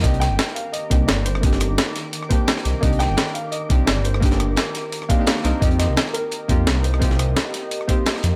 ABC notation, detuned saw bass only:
X:1
M:4/4
L:1/16
Q:"Swing 16ths" 1/4=172
K:Fdor
V:1 name="Detuned saw bass" clef=bass
C,,3 G,,, z6 C,,2 G,,,4- | G,,,3 G,,, z8 z2 C,, z | C,,3 G,,, z6 C,,2 G,,,4- | G,,,3 G,,, z8 z2 C,, z |
F,,3 C,, z6 F,,2 C,,4- | C,,3 C,, z8 z2 F,, z |]